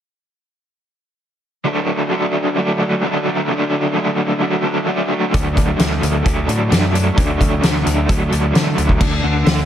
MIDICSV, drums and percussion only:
0, 0, Header, 1, 2, 480
1, 0, Start_track
1, 0, Key_signature, 2, "major"
1, 0, Tempo, 459418
1, 1738, Time_signature, 4, 2, 24, 8
1, 10084, End_track
2, 0, Start_track
2, 0, Title_t, "Drums"
2, 5581, Note_on_c, 9, 36, 81
2, 5582, Note_on_c, 9, 42, 67
2, 5686, Note_off_c, 9, 36, 0
2, 5686, Note_off_c, 9, 42, 0
2, 5820, Note_on_c, 9, 36, 76
2, 5824, Note_on_c, 9, 42, 56
2, 5925, Note_off_c, 9, 36, 0
2, 5929, Note_off_c, 9, 42, 0
2, 6055, Note_on_c, 9, 42, 70
2, 6061, Note_on_c, 9, 38, 93
2, 6159, Note_off_c, 9, 42, 0
2, 6165, Note_off_c, 9, 38, 0
2, 6301, Note_on_c, 9, 42, 58
2, 6406, Note_off_c, 9, 42, 0
2, 6537, Note_on_c, 9, 42, 72
2, 6538, Note_on_c, 9, 36, 96
2, 6642, Note_off_c, 9, 42, 0
2, 6643, Note_off_c, 9, 36, 0
2, 6780, Note_on_c, 9, 42, 53
2, 6884, Note_off_c, 9, 42, 0
2, 7021, Note_on_c, 9, 42, 72
2, 7027, Note_on_c, 9, 38, 92
2, 7125, Note_off_c, 9, 42, 0
2, 7131, Note_off_c, 9, 38, 0
2, 7264, Note_on_c, 9, 42, 57
2, 7368, Note_off_c, 9, 42, 0
2, 7499, Note_on_c, 9, 36, 88
2, 7500, Note_on_c, 9, 42, 66
2, 7603, Note_off_c, 9, 36, 0
2, 7605, Note_off_c, 9, 42, 0
2, 7739, Note_on_c, 9, 36, 75
2, 7744, Note_on_c, 9, 42, 59
2, 7843, Note_off_c, 9, 36, 0
2, 7848, Note_off_c, 9, 42, 0
2, 7975, Note_on_c, 9, 42, 68
2, 7982, Note_on_c, 9, 38, 80
2, 8080, Note_off_c, 9, 42, 0
2, 8086, Note_off_c, 9, 38, 0
2, 8218, Note_on_c, 9, 42, 60
2, 8323, Note_off_c, 9, 42, 0
2, 8456, Note_on_c, 9, 36, 94
2, 8459, Note_on_c, 9, 42, 74
2, 8560, Note_off_c, 9, 36, 0
2, 8564, Note_off_c, 9, 42, 0
2, 8697, Note_on_c, 9, 42, 54
2, 8801, Note_off_c, 9, 42, 0
2, 8935, Note_on_c, 9, 42, 63
2, 8941, Note_on_c, 9, 38, 91
2, 9039, Note_off_c, 9, 42, 0
2, 9046, Note_off_c, 9, 38, 0
2, 9174, Note_on_c, 9, 42, 55
2, 9278, Note_off_c, 9, 42, 0
2, 9291, Note_on_c, 9, 36, 58
2, 9395, Note_off_c, 9, 36, 0
2, 9411, Note_on_c, 9, 36, 92
2, 9411, Note_on_c, 9, 49, 75
2, 9515, Note_off_c, 9, 36, 0
2, 9515, Note_off_c, 9, 49, 0
2, 9887, Note_on_c, 9, 46, 43
2, 9893, Note_on_c, 9, 38, 95
2, 9992, Note_off_c, 9, 46, 0
2, 9998, Note_off_c, 9, 38, 0
2, 10084, End_track
0, 0, End_of_file